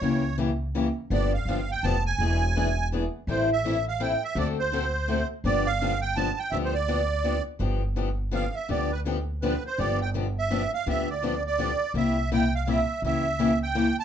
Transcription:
Already playing: accordion C#5
0.02 upright bass C#2, steel-string acoustic guitar C#3 E3 A#3 C#4 G4
0.38 steel-string acoustic guitar C#3 E3 A#3 C#4 G4
0.75 steel-string acoustic guitar C#3 E3 A#3 C#4 G4
1.10 upright bass G1, steel-string acoustic guitar D3 F3 B3 D4 G4, accordion D5
1.34 accordion F5
1.45 upright bass G1, steel-string acoustic guitar D3 F3 B3 D4 G4
1.71 accordion G5
1.83 upright bass F1, steel-string acoustic guitar D3 F3 B3 D4 G4, accordion A5
2.06 accordion G#5
2.18 upright bass E1, steel-string acoustic guitar E3 B3 D4 G#4
2.56 steel-string acoustic guitar E3 B3 D4 G#4
2.92 steel-string acoustic guitar E3 B3 D4 G#4
3.27 upright bass A1, steel-string acoustic guitar E3 G3 C4 E4 A4, accordion C5
3.53 accordion E5
3.65 steel-string acoustic guitar E3 G3 C4 E4 A4
3.88 accordion F5
4.00 steel-string acoustic guitar E3 G3 C4 E4 A4, accordion G5
4.24 accordion E5
4.35 upright bass D2, steel-string acoustic guitar D3 A3 C4 F#4 A4, accordion D5
4.59 accordion C5
4.72 steel-string acoustic guitar D3 A3 C4 F#4 A4
5.08 steel-string acoustic guitar D3 A3 C4 F#4 A4
5.44 upright bass G1, steel-string acoustic guitar D3 F3 B3 D4 G4, accordion D5
5.67 accordion F5
5.81 steel-string acoustic guitar D3 F3 B3 D4 G4
6.02 accordion G5
6.16 steel-string acoustic guitar D3 F3 B3 D4 G4, accordion A5
6.39 accordion G5
6.51 upright bass D2, steel-string acoustic guitar D3 F3 B3 D4 G4, accordion E5
6.65 accordion C5
6.74 accordion D5
6.88 steel-string acoustic guitar D3 F3 B3 D4 G4
7.24 steel-string acoustic guitar D3 F3 B3 D4 G4
7.59 upright bass G1, steel-string acoustic guitar D3 F3 B3 D4 G4
7.96 steel-string acoustic guitar D3 F3 B3 D4 G4
8.31 steel-string acoustic guitar D3 F3 B3 D4 G4, accordion F5
8.55 accordion E5
8.69 upright bass D2, steel-string acoustic guitar D3 F3 B3 D4 G4, accordion D5
8.92 accordion B4
9.05 steel-string acoustic guitar D3 F3 B3 D4 G4
9.42 steel-string acoustic guitar D3 F3 B3 D4 G4, accordion B4
9.66 accordion C5
9.78 upright bass G1, steel-string acoustic guitar D3 F3 B3 D4 G4, accordion D5
10.02 accordion G5
10.14 steel-string acoustic guitar D3 F3 B3 D4 G4
10.39 accordion E5
10.50 steel-string acoustic guitar D3 F3 B3 D4 G4
10.74 accordion F5
10.86 upright bass D2, steel-string acoustic guitar D3 F3 B3 D4 G4, accordion E5
11.10 accordion D5
11.23 steel-string acoustic guitar D3 F3 B3 D4 G4
11.47 accordion D5
11.58 steel-string acoustic guitar D3 F3 B3 D4 G4
11.94 upright bass C2, steel-string acoustic guitar C3 G3 A#3 E4 G4, accordion E5
12.32 steel-string acoustic guitar C3 G3 A#3 E4 G4, accordion G5
12.55 accordion F5
12.67 steel-string acoustic guitar C3 G3 A#3 E4 G4, accordion E5
13.02 upright bass C#2, steel-string acoustic guitar C#3 E3 A#3 C#4 G4, accordion E5
13.39 steel-string acoustic guitar C#3 E3 A#3 C#4 G4
13.63 accordion G5
13.75 steel-string acoustic guitar C#3 E3 A#3 C#4 G4
14.00 accordion A5

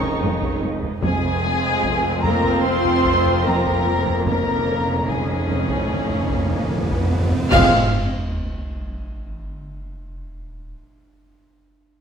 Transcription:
Already playing: double bass section F1, cello section F2, trombone section D#3 G#3, viola section G#3 D#4, french horn section C#4, violin section C#5 C#6
0.02 taiko low
0.22 cello section F2
0.42 taiko
0.63 cello section F2
0.82 taiko low
1.02 double bass section F1, cello section F2, trombone section F3 C4, french horn section G#3, viola section C4 F4, violin section G#4 G#5, taiko, riser
1.44 cello section F2
1.84 cello section F2, taiko
2.23 cello section F2, french horn section A#3, violin section A#4 A#5, taiko low
2.44 taiko
2.64 cello section F2, french horn section C4, violin section C5 C6
2.85 taiko low
3.05 cello section F2, taiko
3.25 taiko low
3.46 cello section F2, french horn section A#3, violin section A#4 A#5
3.66 taiko
3.87 cello section F2
4.06 taiko low
4.26 cello section F2, timpani F2, trombone section D#3 C#4, french horn section A#3, viola section C#4 D#4, violin section A#4 A#5, taiko
4.34 timpani F2
4.42 timpani F2
4.50 timpani F2
4.57 timpani F2
4.64 timpani F2, cello section F2
4.72 timpani F2
4.80 timpani F2
4.87 timpani F2
4.94 timpani F2
5.02 timpani F2
5.08 cello section F2, timpani F2, french horn section G#3, violin section G#4 G#5, taiko
5.16 timpani F2
5.24 timpani F2
5.32 timpani F2
5.39 timpani F2
5.47 timpani F2, cello section F2, taiko low
5.55 timpani F2
5.62 timpani F2
5.69 timpani F2, taiko
5.77 timpani F2
5.85 timpani F2
5.90 cello section F2, timpani F2
5.99 timpani F2
6.07 timpani F2, taiko low
6.15 timpani F2
6.23 timpani F2
6.30 cello section F2, timpani F2, taiko
6.38 timpani F2
6.45 timpani F2
6.50 timpani F2, taiko low
6.60 timpani F2
6.68 timpani F2, cello section F2
6.75 timpani F2
6.83 timpani F2
6.90 timpani F2, taiko
6.97 timpani F2
7.05 timpani F2
7.11 cello section F2, timpani F2
7.20 timpani F2
7.28 timpani F2, taiko low
7.36 timpani F2
7.43 timpani F2
7.51 double bass section F1, cello section F2, timpani F2, trombone section C3 G#3, viola section C4 G#4, french horn section F4, violin section F5 F6, concert bass drum, taiko, crash, sub drop

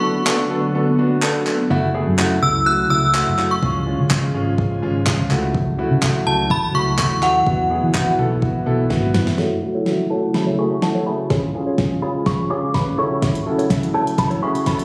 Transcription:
Already playing: analog synth pad D3 F#3 A3 B3 F#4, synth bell C#6
0.02 grand piano B3 D4 A4
0.26 grand piano B3 D4 A4, clap
0.50 grand piano B3 D4 A4
0.74 grand piano B3 D4 A4
0.98 grand piano B3 D4 F#4
1.22 grand piano B3 D4 A4, clap
1.46 grand piano B3 D4 A4, clap
1.70 fingered electric bass F#1, analog synth pad C#3 F#3 A3 E4, grand piano A3 E4 F#4
1.94 grand piano A3 E4 G#4
2.07 fingered electric bass F#2
2.18 grand piano A3 E4 F#4, clap
2.42 fingered electric bass C#2, grand piano A3 E4 F#4, synth bell E6
2.66 grand piano A3 E4 F#4, synth bell F#6
2.90 fingered electric bass C#2, grand piano A3 E4 F#4, synth bell E6
3.14 grand piano A3 E4 F#4, clap
3.27 fingered electric bass F#1
3.38 grand piano A3 E4 F#4, clap
3.51 synth bell C#6
3.62 fingered electric bass C#2, analog synth pad C#3 F3 G#3 F4 G#4, grand piano G#3 C#4 F4, kick
3.86 grand piano G#3 C#4 F4
3.99 fingered electric bass C#3
4.10 grand piano G#3 C#4 F4, kick, clap
4.34 fingered electric bass G#1, grand piano G#3 C#4 F4
4.58 grand piano G#3 C#4 F4, kick
4.82 fingered electric bass G#1, grand piano G#3 C#4 F4
5.07 grand piano G#3 C#4 F4, kick, clap
5.19 fingered electric bass C#2
5.30 fingered electric bass C#2, analog synth pad F#3 A3 E4 F#4, grand piano A3 E4 F#4, clap
5.55 kick
5.78 grand piano A3 E4 F#4
5.91 fingered electric bass C#3
6.02 grand piano A3 E4 F#4, kick, clap
6.26 fingered electric bass C#2, grand piano A3 E4 F#4, synth bell A5
6.50 grand piano A3 E4 F#4, synth bell B5, kick
6.74 fingered electric bass C#2, grand piano A3 E4 F#4, synth bell C#6
6.98 grand piano A3 E4 F#4, synth bell C#6, kick, clap
7.11 fingered electric bass D#2
7.22 grand piano A3 E4 F#4, synth bell F#5, clap
7.46 fingered electric bass E2, analog synth pad B2 E3, grand piano B3 E4 F#4, kick
7.70 grand piano B3 E4 G#4
7.83 fingered electric bass E3
7.94 grand piano B3 E4 F#4, kick, clap
8.18 fingered electric bass B1, grand piano B3 E4 A4
8.42 grand piano B3 E4 F#4, kick
8.66 fingered electric bass B1, grand piano B3 E4 A4
8.90 fingered electric bass G#2, grand piano B3 E4 F#4, kick, snare
9.14 fingered electric bass F#2, grand piano B3 E4 F#4, snare
9.27 snare
9.38 analog synth pad C#3 F#3 A3 E4 F#4, grand piano A3 E4 F#4, clean electric guitar E4 A4 C#5, snare
9.51 muted clean electric guitar stroke
9.62 grand piano A3 E4 F#4, muted clean electric guitar stroke
9.75 clean electric guitar E4 A4 C#5
9.86 grand piano A3 E4 F#4, snare
9.99 muted clean electric guitar stroke
10.10 grand piano A3 E4 F#4, clean electric guitar E4 A4 C#5, synth bell A5
10.23 muted clean electric guitar stroke
10.34 grand piano A3 E4 G#4, synth bell B5, muted clean electric guitar stroke, snare
10.47 clean electric guitar E4 A4 C#5
10.58 grand piano A3 E4 G#4, synth bell C#6, muted clean electric guitar stroke
10.71 muted clean electric guitar stroke
10.82 grand piano A3 E4 F#4, synth bell A5, muted clean electric guitar stroke, snare
10.95 clean electric guitar E4 A4 C#5
11.06 grand piano A3 E4 G#4, synth bell B5, muted clean electric guitar stroke
11.19 muted clean electric guitar stroke
11.30 analog synth pad C#3 F3 G#3 F4 G#4, grand piano C#4 F4 G#4, clean electric guitar F4 G#4 C#5, kick, snare
11.43 muted clean electric guitar stroke
11.54 grand piano C#4 F4 G#4, muted clean electric guitar stroke
11.67 clean electric guitar F4 G#4 C#5
11.78 grand piano C#4 F4 G#4, kick, snare
11.91 muted clean electric guitar stroke
12.02 grand piano C#4 F4 G#4, clean electric guitar F4 G#4 C#5, synth bell B5
12.15 muted clean electric guitar stroke
12.26 grand piano C#4 F4 G#4, synth bell C#6, kick, snare
12.39 muted clean electric guitar stroke
12.50 grand piano C#4 F4 G#4, clean electric guitar F4 G#4 C#5, synth bell D6
12.63 muted clean electric guitar stroke
12.74 grand piano C#4 F4 B4, synth bell B5, muted clean electric guitar stroke, kick, snare
12.87 muted clean electric guitar stroke
12.98 grand piano C#3 E4 F#4 A4, analog synth pad F#3 A3 E4 A4, clean electric guitar E4 A4 C#5, synth bell C#6
13.11 clean electric guitar E4 A4 C#5
13.22 clean electric guitar E4 A4 C#5, kick, snare, closed hi-hat
13.35 muted clean electric guitar stroke, closed hi-hat
13.46 grand piano C#3 E4 F#4 A4, muted clean electric guitar stroke
13.58 clean electric guitar E4 A4 C#5, closed hi-hat
13.70 grand piano E4 F#4 A4, kick, snare, closed hi-hat
13.83 muted clean electric guitar stroke, closed hi-hat
13.94 grand piano C#3 E4 F#4 A4, clean electric guitar E4 A4 C#5, synth bell A5
14.07 muted clean electric guitar stroke, closed hi-hat
14.18 grand piano C#3 E4 A4, synth bell B5, muted clean electric guitar stroke, kick, snare, closed hi-hat
14.30 clean electric guitar E4 A4 C#5, closed hi-hat
14.42 grand piano C#3 E4 F#4 G#4, synth bell C#6, muted clean electric guitar stroke
14.55 muted clean electric guitar stroke, closed hi-hat
14.66 grand piano C#3 E4 F#4 A4, synth bell B5, muted clean electric guitar stroke, kick, snare, closed hi-hat
14.79 muted clean electric guitar stroke, closed hi-hat

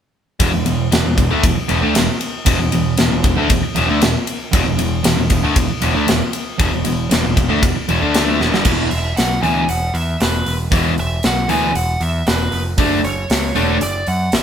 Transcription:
0.40 picked electric bass E1, overdriven electric guitar E2 B2, kick, ride
0.53 picked electric bass E1, overdriven electric guitar E2 B2
0.66 picked electric bass E1, overdriven electric guitar E2 B2, ride
0.92 picked electric bass E1, overdriven electric guitar E2 B2, snare, ride
1.05 picked electric bass E1, overdriven electric guitar E2 B2
1.17 picked electric bass E1, overdriven electric guitar E2 B2, kick, ride
1.31 picked electric bass D2, overdriven electric guitar D3 A3
1.43 picked electric bass E1, overdriven electric guitar E2 B2, kick, ride
1.56 muted distorted electric guitar stroke, muted overdriven electric guitar stroke, muted picked electric bass stroke
1.69 picked electric bass E1, overdriven electric guitar E2 B2, ride
1.82 picked electric bass D2, overdriven electric guitar D3 A3
1.95 picked electric bass E1, overdriven electric guitar E2 B2, snare, ride
2.21 ride
2.46 picked electric bass E1, overdriven electric guitar E2 B2, kick, ride
2.60 picked electric bass E1, overdriven electric guitar E2 B2
2.72 picked electric bass E1, overdriven electric guitar E2 B2, ride
2.97 picked electric bass E1, overdriven electric guitar E2 B2, snare, ride
3.11 picked electric bass E1, overdriven electric guitar E2 B2
3.24 picked electric bass E1, overdriven electric guitar E2 B2, kick, ride
3.37 picked electric bass D2, overdriven electric guitar D3 A3
3.50 picked electric bass E1, overdriven electric guitar E2 B2, kick, ride
3.62 muted distorted electric guitar stroke, muted overdriven electric guitar stroke, muted picked electric bass stroke
3.76 picked electric bass E1, overdriven electric guitar E2 B2, ride
3.90 picked electric bass D2, overdriven electric guitar D3 A3
4.01 picked electric bass E1, overdriven electric guitar E2 B2, snare, ride
4.27 ride
4.53 picked electric bass E1, overdriven electric guitar E2 B2, kick, ride
4.67 picked electric bass E1, overdriven electric guitar E2 B2
4.79 picked electric bass E1, overdriven electric guitar E2 B2, ride
5.04 picked electric bass E1, overdriven electric guitar E2 B2, snare, ride
5.18 picked electric bass E1, overdriven electric guitar E2 B2
5.30 picked electric bass E1, overdriven electric guitar E2 B2, kick, ride
5.44 picked electric bass D2, overdriven electric guitar D3 A3
5.56 picked electric bass E1, overdriven electric guitar E2 B2, kick, ride
5.70 muted distorted electric guitar stroke, muted picked electric bass stroke, muted overdriven electric guitar stroke
5.82 picked electric bass E1, overdriven electric guitar E2 B2, ride
5.95 picked electric bass D2, overdriven electric guitar D3 A3
6.08 picked electric bass E1, overdriven electric guitar E2 B2, snare, ride
6.33 ride
6.59 picked electric bass E1, overdriven electric guitar E2 B2, kick, ride
6.73 picked electric bass E1, overdriven electric guitar E2 B2
6.85 picked electric bass E1, overdriven electric guitar E2 B2, ride
7.11 picked electric bass E1, overdriven electric guitar E2 B2, snare, ride
7.24 picked electric bass E1, overdriven electric guitar E2 B2
7.37 picked electric bass E1, overdriven electric guitar E2 B2, kick, ride
7.49 picked electric bass D2, overdriven electric guitar D3 A3
7.62 picked electric bass E1, overdriven electric guitar E2 B2, kick, ride
7.76 muted overdriven electric guitar stroke, muted distorted electric guitar stroke, muted picked electric bass stroke
7.89 picked electric bass E1, overdriven electric guitar E2 B2, ride
8.01 picked electric bass D2, overdriven electric guitar D3 A3 D4
8.14 snare, ride
8.27 picked electric bass D2, overdriven electric guitar D3 A3
8.40 picked electric bass E1, overdriven electric guitar E2 B2, snare
8.53 picked electric bass G1, overdriven electric guitar G2 D3, snare
8.65 picked electric bass E1, overdriven electric guitar E2 B2 E3, kick, crash
8.90 picked electric bass E1, lead electric guitar E5, open hi-hat
9.17 picked electric bass B1, lead electric guitar F#5, snare, open hi-hat
9.42 picked electric bass D2, overdriven electric guitar E2 B2 E3, lead electric guitar G#5, open hi-hat
9.68 picked electric bass E1, lead electric guitar F#5, open hi-hat
9.94 picked electric bass E2, lead electric guitar E5, open hi-hat
10.20 picked electric bass E1, lead electric guitar B4, snare, open hi-hat
10.46 picked electric bass E1, open hi-hat
10.72 picked electric bass E1, overdriven electric guitar E2 B2 E3, kick, open hi-hat
10.98 picked electric bass E1, lead electric guitar E5, open hi-hat
11.23 picked electric bass B1, lead electric guitar F#5, snare, open hi-hat
11.49 picked electric bass D2, overdriven electric guitar E2 B2 E3, lead electric guitar G#5, open hi-hat
11.75 picked electric bass E1, lead electric guitar F#5, open hi-hat
12.00 picked electric bass E2, lead electric guitar E5, open hi-hat
12.27 picked electric bass E1, lead electric guitar B4, snare, open hi-hat
12.52 picked electric bass F1, open hi-hat
12.78 picked electric bass F#1, overdriven electric guitar D3 A3 D4, kick, open hi-hat
13.04 picked electric bass F#1, lead electric guitar C#5, open hi-hat
13.30 picked electric bass C#2, snare, open hi-hat
13.56 picked electric bass E1, overdriven electric guitar D3 A3 D4, open hi-hat
13.81 picked electric bass F#1, lead electric guitar D5, open hi-hat
14.07 picked electric bass F#2, lead electric guitar F#5, open hi-hat
14.32 picked electric bass G#1, lead electric guitar E5, snare, open hi-hat

